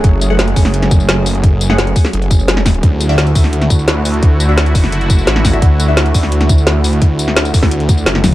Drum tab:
HH |x-x-xxo-xxx-x-ox|x-x-xxo-xxx-x-ox|x-x-xxo-xxx-x-ox|x-x-xxo-xxx-x-ox|
TB |--x---x---xx--x-|--x---x---xx--x-|--x---x---xx--x-|--x---x---xx--x-|
SD |----o--o-o--o---|---oo--o----ooo-|----o--o-o--o---|----o--o----ooo-|
T1 |----------------|----------------|----------------|----------------|
BD |o-----o---o-----|o-----o---o---o-|o-----o---o-----|o-----o---o---o-|

HH |x-x-xxo-xxx-x-ox|x-x-xxo-xxx-x-o-|
TB |--x---x---xx--x-|--x--xx---xx--x-|
SD |----o--o-o--o---|---oo--o----ooo-|
T1 |----------------|--------------o-|
BD |o-----o---o-----|o-----oo--o---o-|